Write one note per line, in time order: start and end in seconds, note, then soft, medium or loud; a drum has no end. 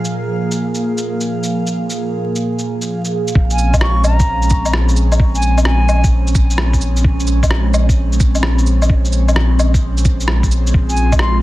0.00 3.32 A#2 medium
0.00 3.32 F3 medium
0.00 3.32 A#3 medium
0.00 3.31 G#4 medium
0.00 3.37 F5 medium
0.05 shaker soft
0.51 shaker soft
0.75 shaker soft
0.98 shaker soft
1.21 shaker soft
1.43 shaker soft
1.67 shaker soft
1.90 shaker medium
2.36 shaker medium
2.59 shaker soft
2.82 shaker medium
3.05 shaker soft
3.28 shaker medium
3.35 10.72 A#1 medium
3.35 11.42 G#3 medium
3.35 11.42 C4 medium
3.35 10.69 C#4 medium
3.35 kick loud
3.50 3.75 G#5 medium
3.50 shaker soft
3.58 cabasa medium
3.74 kick medium
3.74 low woodblock medium
3.74 shaker medium
3.81 4.03 C#6 loud
3.81 cross-stick loud
4.04 4.71 A#5 medium
4.04 cabasa medium
4.04 low woodblock medium
4.19 kick loud
4.19 shaker medium
4.42 shaker soft
4.50 kick loud
4.50 cabasa medium
4.65 low woodblock soft
4.65 shaker medium
4.74 cross-stick loud
4.89 shaker soft
4.97 cabasa medium
5.12 low woodblock medium
5.12 shaker medium
5.20 kick loud
5.35 5.59 G#5 medium
5.35 shaker soft
5.42 cabasa medium
5.58 low woodblock medium
5.58 shaker medium
5.65 6.04 G#5 loud
5.65 cross-stick loud
5.89 cabasa medium
5.89 low woodblock medium
6.04 kick loud
6.04 shaker medium
6.27 cabasa soft
6.27 shaker soft
6.35 kick loud
6.35 cabasa medium
6.50 shaker medium
6.58 cross-stick loud
6.73 kick medium
6.73 shaker soft
6.81 cabasa medium
6.97 shaker medium
7.04 kick loud
7.20 shaker soft
7.27 cabasa medium
7.43 kick medium
7.43 low woodblock soft
7.43 shaker medium
7.51 cross-stick loud
7.74 cabasa medium
7.74 low woodblock medium
7.89 kick loud
7.89 shaker medium
8.12 shaker soft
8.20 kick loud
8.20 cabasa medium
8.35 low woodblock soft
8.35 shaker medium
8.43 cross-stick loud
8.58 shaker soft
8.66 cabasa medium
8.82 low woodblock medium
8.82 shaker medium
8.90 kick loud
9.05 shaker soft
9.12 cabasa medium
9.28 low woodblock medium
9.28 shaker medium
9.36 cross-stick loud
9.59 cabasa medium
9.59 low woodblock medium
9.74 kick loud
9.74 shaker medium
9.98 cabasa soft
9.98 shaker soft
10.05 kick loud
10.05 cabasa medium
10.20 shaker medium
10.28 cross-stick loud
10.43 kick medium
10.43 shaker soft
10.51 cabasa medium
10.67 shaker medium
10.73 11.42 A#1 medium
10.73 11.42 F4 medium
10.73 kick loud
10.89 11.13 G#5 medium
10.89 shaker soft
10.97 cabasa medium
11.12 kick medium
11.12 low woodblock medium
11.12 shaker medium
11.19 11.42 C6 medium
11.19 cross-stick loud